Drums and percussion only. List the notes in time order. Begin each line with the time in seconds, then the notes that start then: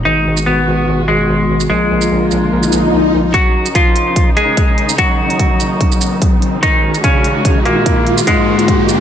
0.37 shaker
1.60 shaker
2.01 shaker
2.31 shaker
2.63 shaker
2.72 shaker
3.34 kick, closed hi-hat
3.66 closed hi-hat, shaker
3.75 kick, closed hi-hat
3.96 closed hi-hat
4.16 kick, closed hi-hat
4.37 closed hi-hat
4.57 kick, closed hi-hat
4.78 closed hi-hat
4.89 shaker
4.98 kick, closed hi-hat
5.30 closed hi-hat
5.40 kick, closed hi-hat
5.60 closed hi-hat, shaker
5.81 kick, closed hi-hat
5.92 shaker
6.01 closed hi-hat, shaker
6.22 kick, closed hi-hat
6.42 closed hi-hat
6.63 kick, closed hi-hat
6.95 closed hi-hat, shaker
7.04 kick, closed hi-hat
7.24 closed hi-hat
7.45 kick, closed hi-hat
7.66 closed hi-hat
7.86 kick, closed hi-hat
8.07 closed hi-hat
8.18 shaker
8.27 kick, closed hi-hat
8.59 closed hi-hat
8.68 kick, closed hi-hat
8.89 closed hi-hat, shaker